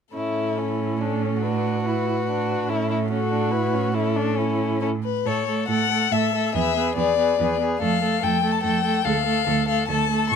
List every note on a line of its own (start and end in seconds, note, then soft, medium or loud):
0.13 2.65 A2 soft
0.13 0.59 C#4 soft
0.13 0.59 E4 soft
0.13 0.97 A4 soft
0.57 1.42 C#4 soft
0.57 1.02 E4 soft
1.00 1.23 D4 soft
1.00 1.44 A4 soft
1.22 1.43 C#4 soft
1.42 1.87 D4 soft
1.42 2.70 F#4 soft
1.42 1.84 B4 soft
1.85 2.06 E4 soft
1.85 2.70 B4 soft
2.06 2.14 E4 soft
2.27 2.70 D4 soft
2.68 5.01 A2 soft
2.68 3.10 C#4 soft
2.68 2.89 E4 soft
2.68 3.10 A4 soft
2.90 2.98 E4 soft
3.11 3.19 C#4 soft
3.11 3.96 F#4 soft
3.11 3.53 A4 soft
3.31 3.53 D4 soft
3.51 3.75 E4 soft
3.51 3.94 B4 soft
3.74 3.94 C#4 soft
3.94 4.39 C#4 soft
3.94 4.17 E4 soft
3.94 4.80 A4 soft
4.16 4.38 D4 soft
4.37 4.81 C#4 soft
4.37 4.80 E4 soft
4.81 4.89 C#4 soft
4.81 4.89 E4 soft
4.81 4.90 A4 soft
5.03 5.28 B4 soft
5.25 5.62 A2 soft
5.25 5.47 A3 soft
5.25 5.47 A4 soft
5.25 5.67 C#5 soft
5.47 5.68 A3 soft
5.47 5.69 A4 soft
5.68 6.04 A2 soft
5.68 5.90 A3 soft
5.68 5.90 A4 soft
5.68 6.14 F#5 medium
5.91 6.11 A3 soft
5.91 6.12 A4 soft
6.11 6.48 A2 soft
6.11 6.33 A3 soft
6.11 6.34 A4 soft
6.11 6.54 E5 medium
6.33 6.54 A3 soft
6.33 6.55 A4 soft
6.55 6.90 E2 soft
6.55 6.75 B3 soft
6.55 6.76 G#4 soft
6.55 6.96 E5 medium
6.76 6.96 B3 soft
6.76 6.97 G#4 soft
6.96 7.32 E2 soft
6.96 7.17 B3 soft
6.96 7.18 G#4 soft
6.96 7.59 D5 medium
7.17 7.38 B3 soft
7.17 7.39 G#4 soft
7.39 7.75 E2 soft
7.39 7.59 B3 soft
7.39 7.61 G#4 soft
7.59 7.80 B3 soft
7.59 7.82 G#4 soft
7.80 8.16 F2 medium
7.80 8.02 A3 soft
7.80 8.02 A4 soft
7.80 8.25 F5 medium
8.02 8.22 A3 soft
8.02 8.22 A4 soft
8.22 8.58 F2 medium
8.22 8.42 A3 soft
8.22 8.43 A4 soft
8.22 8.53 G5 medium
8.43 8.63 A3 soft
8.43 8.63 A4 soft
8.51 8.63 A5 soft
8.63 8.99 F2 soft
8.63 8.84 A3 soft
8.63 8.83 A4 soft
8.63 9.07 G5 medium
8.84 9.05 A3 soft
8.84 9.04 A4 soft
9.05 9.40 D2 medium
9.05 9.26 A3 soft
9.05 9.25 A4 soft
9.05 9.67 F5 medium
9.26 9.46 A3 soft
9.26 9.46 A4 soft
9.47 9.82 D2 medium
9.47 9.68 A3 soft
9.47 9.68 A4 soft
9.68 9.88 A3 soft
9.68 9.89 A4 soft
9.68 9.87 F5 medium
9.88 10.24 D2 medium
9.88 10.09 A3 soft
9.88 10.10 A4 soft
9.88 10.29 A5 medium
10.09 10.30 A3 soft
10.09 10.31 A4 soft
10.30 10.36 A2 medium
10.30 10.36 C#6 medium